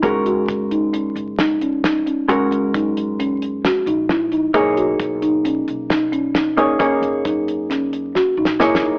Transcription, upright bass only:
X:1
M:5/4
L:1/8
Q:1/4=133
K:F#
V:1 name="Upright bass" clef=bass
F,,,2 F,,,3 F,,,4 z | F,,, F,,, F,,4 z A,,,3 | B,,,2 B,,,3 B,,,4 z | F,,, F,,, F,,4 z A,,, G,,, F,,, |]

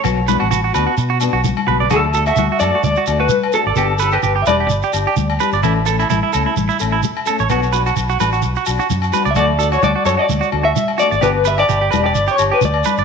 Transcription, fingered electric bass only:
X:1
M:4/4
L:1/16
Q:"Swing 16ths" 1/4=129
K:D
V:1 name="Fingered electric bass" clef=bass
B,,,3 A,,,3 D,, z B,,3 B,,,2 z B,,,2 | D,,4 D,, z F,, z D,, z D,,2 z3 ^G,,, | G,,,4 G,,,2 E,,,2 G,,, z G,,, z D,,2 z G,,, | A,,,4 A,,, z C,, z A,,, z A,,,2 z3 A,,, |
B,,,4 B,,,2 A,,,2 B,,, z B,,, z F,,2 z C,, | D,,4 D,, z F,, z D,, z D,,2 z3 ^G,,, | G,,,4 G,,,2 E,,,2 G,,, z G,,, z D,,2 z G,,, |]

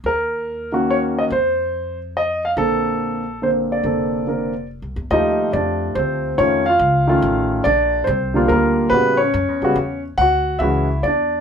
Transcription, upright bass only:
X:1
M:3/4
L:1/8
Q:"Swing" 1/4=142
K:Bb
V:1 name="Upright bass" clef=bass
E,,6 | F,,6 | B,,,6 | F,,,4- (3F,,, C,, =E,, |
E,,2 F,,2 D,,2 | F,,2 ^C,,2 A,,,2 | B,,,2 C,,2 D,,2 | A,,2 (3^F,, =E,, ^C,, E,,2 |
D,,2 ^C,,2 =E,,2 |]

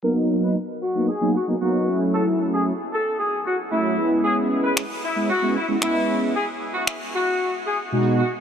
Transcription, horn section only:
X:1
M:4/4
L:1/16
Q:1/4=114
K:B
V:1 name="Horn section"
A z2 B z2 F2 G2 F z F3 z | =A z2 G z2 A2 G2 F z E3 z | G z2 B z2 E2 F2 E z E3 z | G z2 F z2 F3 z G z3 F z |]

